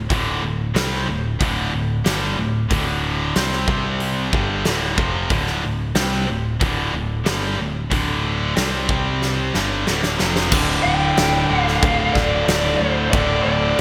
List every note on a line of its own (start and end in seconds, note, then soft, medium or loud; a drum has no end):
0.10 0.40 D1 medium
0.10 0.42 D2 medium
0.10 0.42 A2 medium
0.10 0.42 D3 medium
0.10 kick loud
0.10 open hi-hat soft
0.42 0.73 D1 medium
0.42 0.69 D2 medium
0.42 0.69 A2 medium
0.74 1.05 C2 medium
0.74 1.06 C3 medium
0.74 1.06 G3 medium
0.74 1.07 C4 medium
0.74 snare loud
0.74 open hi-hat soft
1.07 1.38 D1 medium
1.07 1.33 D2 medium
1.07 1.33 A2 medium
1.39 1.71 D1 medium
1.39 1.71 D2 medium
1.39 1.71 A2 loud
1.39 1.72 D3 loud
1.39 kick medium
1.39 open hi-hat soft
1.72 2.03 D1 medium
1.72 1.98 D2 medium
1.72 1.99 A2 medium
2.04 2.36 G1 medium
2.04 2.36 G2 medium
2.04 2.37 D3 medium
2.04 2.37 G3 medium
2.04 snare loud
2.04 open hi-hat soft
2.38 2.69 D1 medium
2.38 2.64 D2 medium
2.38 2.64 A2 medium
2.70 3.32 D1 medium
2.70 3.35 D2 medium
2.70 3.35 A2 loud
2.70 3.35 D3 loud
2.70 kick loud
2.70 open hi-hat medium
3.35 3.66 C2 medium
3.35 3.68 C3 medium
3.35 3.68 G3 medium
3.35 3.68 C4 medium
3.35 snare loud
3.35 open hi-hat medium
3.52 snare soft
3.68 4.29 C2 medium
3.68 4.33 C3 medium
3.68 4.33 G3 medium
3.68 4.33 C4 medium
3.68 kick loud
4.00 open hi-hat medium
4.33 4.64 G1 medium
4.33 4.65 G2 medium
4.33 4.65 D3 medium
4.33 4.66 G3 medium
4.33 kick loud
4.65 4.96 D1 medium
4.65 4.97 D2 medium
4.65 4.97 A2 medium
4.65 4.98 D3 medium
4.65 snare loud
4.65 open hi-hat soft
4.98 5.29 F1 medium
4.98 5.30 F2 medium
4.98 5.30 C3 medium
4.98 5.30 F3 loud
4.98 kick loud
5.30 5.61 D1 medium
5.30 5.62 D2 medium
5.30 5.62 A2 loud
5.30 5.63 D3 loud
5.30 kick loud
5.30 open hi-hat soft
5.47 snare soft
5.63 5.94 D1 medium
5.63 5.89 D2 medium
5.63 5.90 A2 medium
5.95 6.26 C2 medium
5.95 6.27 C3 medium
5.95 6.28 G3 medium
5.95 6.28 C4 medium
5.95 snare loud
5.95 open hi-hat soft
6.28 6.59 D1 medium
6.28 6.54 D2 medium
6.28 6.55 A2 medium
6.60 6.92 D1 medium
6.60 6.92 D2 medium
6.60 6.93 A2 medium
6.60 6.93 D3 loud
6.60 kick loud
6.60 open hi-hat soft
6.94 7.24 D1 medium
6.94 7.20 D2 medium
6.94 7.20 A2 medium
7.25 7.57 G1 medium
7.25 7.58 G2 medium
7.25 7.58 D3 loud
7.25 7.58 G3 loud
7.25 snare loud
7.25 open hi-hat soft
7.58 7.90 D1 medium
7.58 7.85 D2 medium
7.58 7.85 A2 medium
7.90 8.53 D1 medium
7.90 8.55 D2 medium
7.90 8.56 A2 medium
7.90 8.56 D3 loud
7.90 kick medium
7.90 open hi-hat soft
8.56 8.87 C2 medium
8.56 8.88 C3 medium
8.56 8.88 G3 medium
8.56 8.89 C4 loud
8.56 snare loud
8.56 open hi-hat medium
8.89 9.51 C2 medium
8.89 9.53 C3 medium
8.89 9.54 G3 medium
8.89 9.54 C4 loud
8.89 kick loud
9.22 snare medium
9.54 9.85 G1 medium
9.54 9.86 G2 medium
9.54 9.87 D3 medium
9.54 9.87 G3 medium
9.54 snare medium
9.87 10.18 D1 medium
9.87 10.19 D2 medium
9.87 10.19 A2 loud
9.87 10.19 D3 loud
9.87 snare medium
10.03 snare medium
10.19 10.51 F1 medium
10.19 10.51 F2 medium
10.19 10.51 C3 medium
10.19 10.52 F3 medium
10.19 snare medium
10.36 snare medium
10.51 10.80 D1 loud
10.51 11.52 D2 medium
10.51 11.49 A2 loud
10.51 11.49 D3 loud
10.51 13.81 D4 medium
10.51 13.81 A4 medium
10.51 13.81 F5 medium
10.51 kick loud
10.51 crash loud
10.51 crash medium
10.83 11.12 D1 medium
10.83 11.47 G5 loud
11.17 11.45 D1 medium
11.17 snare loud
11.17 crash medium
11.47 11.78 D1 medium
11.47 13.12 A2 medium
11.47 13.11 D3 medium
11.47 12.10 F5 loud
11.52 13.12 D2 medium
11.68 snare soft
11.81 12.10 D1 medium
11.81 13.10 D2 medium
11.81 13.12 A2 medium
11.81 kick loud
11.81 crash medium
11.85 13.12 D3 medium
12.13 12.43 D1 medium
12.13 12.44 D5 medium
12.13 kick medium
12.13 snare soft
12.45 12.75 D1 medium
12.45 12.78 D5 medium
12.45 snare loud
12.45 crash medium
12.78 13.08 D2 medium
12.78 13.10 C5 medium
13.10 13.41 D1 medium
13.10 13.81 D2 medium
13.10 13.81 A2 medium
13.10 13.42 D5 loud
13.10 kick loud
13.10 crash medium
13.15 13.81 D3 loud
13.43 13.73 D1 medium
13.43 13.81 D5 medium